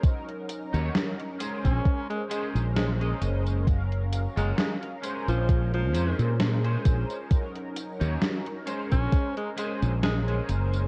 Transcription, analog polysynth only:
X:1
M:4/4
L:1/8
Q:"Swing 16ths" 1/4=66
K:Bbm
V:1 name="Analog polysynth"
[G,DEB]3 [A,DBc]4- [A,DBc] | [G,DBf]3 [A,DBc]4- [A,DBc] | [G,DEB]3 [A,DBc]4- [A,DBc] |]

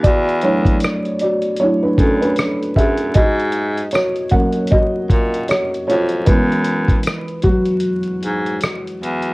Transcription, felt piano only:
X:1
M:4/4
L:1/16
Q:"Swing 16ths" 1/4=77
K:G#phr
V:1 name="Felt piano"
[F=d]2 [Ec]4 [Fd]2 [Ec] [=DB] [CA] [DB]3 [Ge]2 | [Fd]4 [Fc]2 [^Af]2 [Fd]4 [Fc]2 [^Ec]2 | [EB]4 z2 [F,F]8 z2 |]
V:2 name="Felt piano"
z2 [F,A,=D]6 [F,A,D]2 z6 | z6 [F,^A,C]6 z4 | [E,G,B,]16 |]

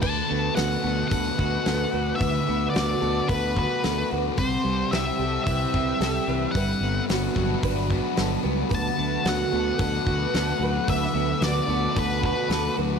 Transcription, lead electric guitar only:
X:1
M:4/4
L:1/8
Q:1/4=111
K:Dmix
V:1 name="Lead electric guitar"
a2 f2 f4 | e2 d2 B B2 z | c2 e2 e4 | f2 z6 |
a2 f2 f4 | e2 d2 B B2 z |]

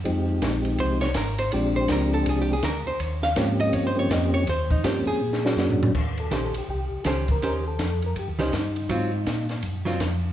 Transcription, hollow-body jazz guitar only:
X:1
M:4/4
L:1/16
Q:"Swing" 1/4=163
K:Ebmix
V:1 name="Hollow-body jazz guitar"
z8 c2 d2 B2 c2 | =d2 c2 B2 =A2 (3_A2 G2 A2 B2 c2 | d2 f2 z2 e2 (3d2 c2 d2 e2 d2 | c2 E2 G2 A8- A z |
z4 [E,DGc]2 z6 [E,DGc]2 z2 | [E,DGc]2 z8 [E,DGc]2 z4 | [_G,CF]2 z8 [G,CF]2 z4 |]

